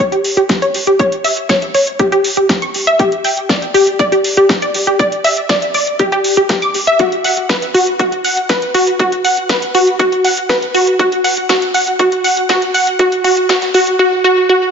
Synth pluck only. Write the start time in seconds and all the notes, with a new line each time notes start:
0.12 G4
0.37 G4
0.62 C#5
0.87 G4
1.00 C#5
1.25 E5
1.50 C#5
1.75 C#5
1.99 G4
2.12 G4
2.37 G4
2.62 C#6
2.87 E5
2.99 G4
3.25 G5
3.49 D5
3.74 G4
3.99 D5
4.12 G4
4.37 G4
4.62 D5
4.87 G4
4.99 D5
5.24 E5
5.49 D5
5.75 D5
6.00 G4
6.12 G4
6.37 G4
6.62 D6
6.87 E5
7.00 F#4
7.25 F#5
7.49 B4
7.74 F#4
7.99 F#4
8.24 F#5
8.49 B4
8.74 F#4
8.99 F#4
9.24 F#5
9.49 B4
9.74 F#4
9.99 F#4
10.24 F#5
10.49 B4
10.74 F#4
10.99 F#4
11.24 F#5
11.49 F#4
11.74 F#5
11.99 F#4
12.24 F#5
12.49 F#4
12.74 F#5
12.99 F#4
13.24 F#4
13.49 F#4
13.74 F#4
13.99 F#4
14.24 F#4
14.49 F#4